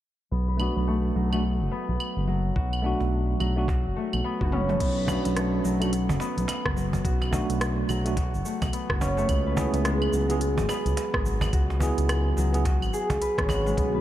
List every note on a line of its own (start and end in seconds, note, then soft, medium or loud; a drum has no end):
0.31 0.69 B1 medium
0.31 0.59 B3 medium
0.48 2.53 B4 medium
0.57 1.27 A3 medium
0.57 0.76 B3 medium
0.57 1.28 D4 medium
0.57 claves medium
0.61 1.30 F#4 medium
0.76 1.11 B1 medium
0.76 1.71 B3 medium
0.88 1.32 A3 medium
1.16 1.62 B1 medium
1.16 2.26 F#3 medium
1.32 1.42 A3 medium
1.32 3.96 A3 medium
1.32 1.42 D4 medium
1.32 1.43 F#4 medium
1.32 claves medium
1.61 1.69 F#1 medium
1.71 4.24 B3 medium
1.89 1.97 B1 medium
2.00 claves medium
2.17 2.51 F#1 medium
2.28 3.39 F#3 medium
2.56 2.94 B1 medium
2.56 3.68 F#4 medium
2.56 kick loud
2.73 claves medium
2.82 3.52 A3 medium
2.82 3.53 D4 medium
2.82 3.54 F#4 loud
3.00 3.35 B1 medium
3.00 cajon slap soft
3.40 3.87 B1 medium
3.40 4.85 F#3 medium
3.40 claves medium
3.56 3.66 A3 medium
3.56 3.67 D4 medium
3.56 3.67 F#4 medium
3.68 4.41 F#4 medium
3.68 kick loud
3.68 cajon slap medium
3.85 3.93 F#1 medium
3.96 4.69 A3 medium
4.13 4.21 B1 medium
4.13 claves medium
4.24 4.80 B3 medium
4.41 4.75 F#1 medium
4.41 6.85 F#4 medium
4.41 kick medium
4.41 high tom soft
4.52 7.42 C#4 medium
4.52 mid tom medium
4.69 5.36 A3 medium
4.69 cajon slap soft
4.69 mid tom medium
4.80 5.18 B1 loud
4.80 5.08 B3 medium
4.80 kick loud
4.80 closed hi-hat medium
4.80 crash medium
4.80 shaker soft
4.97 7.02 B4 medium
5.07 5.76 A3 medium
5.07 5.25 B3 medium
5.07 5.77 D4 medium
5.07 cajon bass medium
5.07 claves medium
5.07 shaker medium
5.11 5.78 F#4 medium
5.25 5.60 B1 medium
5.25 6.20 B3 medium
5.25 cajon slap soft
5.25 closed hi-hat soft
5.25 shaker soft
5.36 5.81 A3 medium
5.36 cross-stick medium
5.36 closed hi-hat medium
5.36 shaker soft
5.64 6.11 B1 medium
5.64 6.75 F#3 medium
5.64 shaker medium
5.80 5.90 A3 medium
5.80 8.45 A3 medium
5.80 5.91 D4 medium
5.80 5.91 F#4 medium
5.80 closed hi-hat soft
5.80 claves medium
5.80 shaker soft
5.93 closed hi-hat medium
5.93 shaker soft
6.09 6.18 F#1 medium
6.09 cajon bass medium
6.09 shaker soft
6.20 8.73 B3 medium
6.20 cajon slap medium
6.20 shaker medium
6.37 6.45 B1 medium
6.37 closed hi-hat soft
6.37 shaker soft
6.48 cajon slap medium
6.48 closed hi-hat medium
6.48 claves medium
6.48 shaker soft
6.65 7.00 F#1 medium
6.65 kick medium
6.65 cross-stick medium
6.76 7.88 F#3 medium
6.76 shaker medium
6.93 cajon bass medium
6.93 shaker soft
7.05 7.42 B1 loud
7.05 8.17 F#4 medium
7.05 kick loud
7.05 closed hi-hat medium
7.05 shaker soft
7.22 cajon slap medium
7.22 claves medium
7.31 8.01 A3 medium
7.31 8.02 D4 medium
7.31 8.03 F#4 medium
7.31 cajon bass medium
7.31 shaker medium
7.50 7.84 B1 medium
7.50 closed hi-hat soft
7.50 shaker soft
7.61 cross-stick medium
7.61 closed hi-hat medium
7.61 shaker soft
7.89 8.35 B1 medium
7.89 9.34 F#3 medium
7.89 claves medium
7.89 shaker medium
8.05 8.15 A3 medium
8.05 8.15 D4 medium
8.05 8.16 F#4 medium
8.05 closed hi-hat soft
8.05 shaker soft
8.17 8.90 F#4 medium
8.17 kick loud
8.17 cajon slap medium
8.17 closed hi-hat medium
8.17 shaker soft
8.34 8.42 F#1 medium
8.34 shaker soft
8.45 9.17 A3 medium
8.45 shaker medium
8.62 8.70 B1 medium
8.62 kick medium
8.62 cajon bass medium
8.62 closed hi-hat soft
8.62 claves medium
8.62 shaker soft
8.73 9.29 B3 medium
8.73 closed hi-hat medium
8.73 shaker soft
8.90 9.24 F#1 medium
8.90 11.34 F#4 medium
8.90 kick medium
8.90 cross-stick medium
9.01 11.91 C#4 medium
9.01 cajon bass medium
9.01 shaker medium
9.17 9.91 A3 loud
9.17 cajon slap soft
9.17 shaker soft
9.29 9.67 C#2 loud
9.29 9.57 B3 medium
9.29 kick loud
9.29 closed hi-hat medium
9.29 claves medium
9.29 shaker soft
9.46 11.51 B4 medium
9.55 10.25 B3 medium
9.55 9.74 B3 medium
9.55 10.26 E4 medium
9.55 10.27 G#4 medium
9.55 cajon bass medium
9.55 shaker medium
9.74 10.08 C#2 medium
9.74 10.69 B3 medium
9.74 cajon slap soft
9.74 closed hi-hat soft
9.74 shaker soft
9.85 10.29 G#3 medium
9.85 cross-stick medium
9.85 closed hi-hat medium
9.85 shaker soft
10.02 claves medium
10.13 10.59 C#2 medium
10.13 11.24 F#3 medium
10.13 shaker medium
10.29 13.65 G#3 medium
10.29 10.39 B3 medium
10.29 10.39 E4 medium
10.29 10.40 G#4 medium
10.29 closed hi-hat soft
10.29 shaker soft
10.41 closed hi-hat medium
10.41 shaker soft
10.58 10.66 G#1 medium
10.58 cajon bass medium
10.58 shaker soft
10.69 13.77 B3 medium
10.69 cajon slap medium
10.69 claves medium
10.69 shaker medium
10.86 10.94 C#2 medium
10.86 closed hi-hat soft
10.86 shaker soft
10.97 cajon slap medium
10.97 closed hi-hat medium
10.97 shaker soft
11.14 11.48 G#1 medium
11.14 kick medium
11.14 cross-stick medium
11.25 12.36 F#3 medium
11.25 shaker medium
11.41 cajon bass medium
11.41 claves medium
11.41 shaker soft
11.53 11.91 C#2 loud
11.53 12.65 F#4 medium
11.53 kick loud
11.53 closed hi-hat medium
11.53 shaker soft
11.70 cajon slap medium
11.79 12.49 B3 medium
11.79 12.50 E4 medium
11.79 cajon bass medium
11.79 shaker medium
11.83 12.51 G#4 loud
11.98 12.33 C#2 medium
11.98 closed hi-hat soft
11.98 shaker soft
12.09 cross-stick medium
12.09 closed hi-hat medium
12.09 claves medium
12.09 shaker soft
12.37 12.84 C#2 medium
12.37 13.83 F#3 medium
12.37 cajon slap soft
12.37 shaker medium
12.53 12.63 B3 medium
12.53 12.64 E4 medium
12.53 12.64 G#4 medium
12.53 closed hi-hat soft
12.53 shaker soft
12.65 13.49 F#4 medium
12.65 kick loud
12.65 cajon slap medium
12.65 closed hi-hat medium
12.65 shaker soft
12.82 12.90 G#1 medium
12.82 claves medium
12.82 shaker soft
12.93 14.01 G#4 medium
12.93 shaker medium
13.10 13.18 C#2 medium
13.10 cajon bass medium
13.10 kick medium
13.10 closed hi-hat soft
13.10 shaker soft
13.21 13.94 B4 medium
13.21 closed hi-hat medium
13.21 shaker soft
13.38 13.73 G#1 medium
13.38 14.01 C#4 medium
13.38 kick loud
13.38 cross-stick medium
13.38 closed hi-hat soft
13.49 14.01 F#4 medium
13.49 cajon bass medium
13.49 claves medium
13.49 shaker medium
13.66 13.83 G#3 medium
13.66 cajon slap soft
13.66 shaker soft
13.77 14.01 B1 loud
13.77 14.01 D3 medium
13.77 14.01 F#3 medium
13.77 14.01 A3 medium
13.77 14.01 B3 medium
13.77 14.01 F#4 medium
13.77 kick loud
13.77 closed hi-hat medium
13.77 shaker soft
13.95 14.01 B4 medium